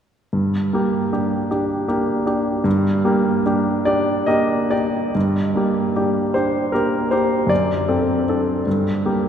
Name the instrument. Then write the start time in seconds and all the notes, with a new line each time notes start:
grand piano
0.33 G2
0.73 A#3 G4
1.12 D4 G4
1.51 D4 G4
1.88 A#3 G4
2.26 D4 G4
2.64 G2
3.05 A#3 G4
3.46 D4 G4
3.85 D4 G4 D5
4.26 A#3 G4 D#5
4.71 D4 G4 D5
5.15 G2
5.55 A#3 G4
5.96 D4 G4
6.34 D4 G4 C5
6.72 A#3 G4 A#4
7.11 D4 G4 C5
7.47 F#2 D5
7.88 C4 A4
8.29 D4 A4
8.67 G2
9.05 A#3 G4